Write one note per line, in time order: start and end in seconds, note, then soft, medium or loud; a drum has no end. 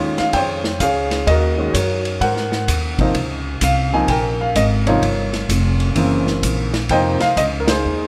0.00 0.16 D#2 medium
0.00 0.59 D#3 medium
0.00 0.59 G#3 medium
0.00 0.59 C#4 medium
0.00 0.60 F4 medium
0.00 0.31 G#4 medium
0.00 0.14 C#5 medium
0.18 0.35 F5 medium
0.18 muted upright bass stroke soft
0.18 snare soft
0.18 ride soft
0.33 0.80 F2 medium
0.33 1.25 C5 medium
0.33 0.82 C#5 medium
0.33 0.82 G5 loud
0.33 kick soft
0.33 ride medium
0.64 snare soft
0.80 1.26 C#2 medium
0.80 1.26 G#4 medium
0.80 1.26 C#5 medium
0.80 1.25 F5 medium
0.80 kick soft
0.80 hi-hat pedal medium
0.80 ride medium
1.11 snare soft
1.11 ride soft
1.27 1.73 D#2 medium
1.27 1.58 F#4 medium
1.27 1.75 A#4 medium
1.27 1.71 D#5 medium
1.27 kick soft
1.27 ride medium
1.58 1.73 D#3 soft
1.58 1.73 G#3 soft
1.58 1.73 C#4 soft
1.58 1.74 F#4 medium
1.73 2.20 F#2 medium
1.73 2.19 F#4 medium
1.73 2.20 A#4 soft
1.73 2.23 C#5 medium
1.73 kick soft
1.73 hi-hat pedal medium
1.73 ride medium
2.05 ride soft
2.21 2.67 G#2 medium
2.21 3.12 A#4 medium
2.21 3.12 C5 medium
2.21 2.95 F#5 medium
2.21 kick soft
2.21 ride medium
2.36 snare soft
2.52 snare soft
2.68 3.14 D#2 medium
2.68 kick soft
2.68 hi-hat pedal medium
2.68 ride medium
2.99 3.14 C3 medium
2.99 3.14 F3 medium
2.99 3.15 A#3 medium
2.99 3.15 D#4 medium
2.99 kick medium
2.99 ride soft
3.14 3.60 C#2 medium
3.14 kick soft
3.14 ride medium
3.61 4.07 C2 medium
3.61 3.95 F5 medium
3.61 kick soft
3.61 hi-hat pedal medium
3.61 ride medium
3.93 4.07 C3 medium
3.93 4.08 F3 medium
3.93 4.08 A#3 medium
3.93 4.08 D#4 medium
3.93 4.08 G#5 medium
4.08 4.54 A#1 medium
4.08 4.88 A#4 medium
4.08 4.38 G5 medium
4.08 kick soft
4.08 ride medium
4.41 4.55 F5 medium
4.55 5.01 G#1 medium
4.55 4.63 D#5 medium
4.55 kick soft
4.55 hi-hat pedal medium
4.55 ride medium
4.86 5.01 C3 medium
4.86 5.01 F3 medium
4.86 5.02 A#3 medium
4.86 5.02 D#4 medium
4.86 5.94 F4 medium
4.86 6.25 A#4 medium
4.86 6.24 C#5 medium
4.86 ride soft
5.02 5.48 G1 medium
5.02 kick soft
5.02 ride medium
5.33 snare soft
5.33 ride soft
5.49 5.95 F1 medium
5.49 kick soft
5.49 hi-hat pedal medium
5.49 ride medium
5.80 ride soft
5.95 6.42 F#1 medium
5.95 6.68 C#3 medium
5.95 6.68 E3 medium
5.95 6.68 A#3 medium
5.95 6.69 C4 medium
5.95 kick soft
5.95 ride medium
6.27 snare soft
6.43 6.89 A#1 medium
6.43 kick soft
6.43 hi-hat pedal medium
6.43 ride medium
6.74 snare medium
6.74 ride soft
6.89 7.19 F2 medium
6.89 7.18 C3 medium
6.89 7.19 F3 medium
6.89 7.19 A#3 medium
6.89 7.19 D#4 medium
6.89 7.67 C5 medium
6.89 7.36 D#5 medium
6.89 7.23 G5 loud
6.89 kick soft
6.89 ride medium
7.20 7.26 F5 medium
7.20 muted upright bass stroke soft
7.20 snare soft
7.20 ride soft
7.36 7.82 C#2 medium
7.36 7.43 D#5 medium
7.36 kick soft
7.36 hi-hat pedal medium
7.36 ride medium
7.60 7.69 A#4 medium
7.68 8.07 D#4 medium
7.68 8.07 G#4 medium
7.68 8.07 C5 medium
7.68 snare medium
7.68 ride medium
7.85 8.07 D#2 medium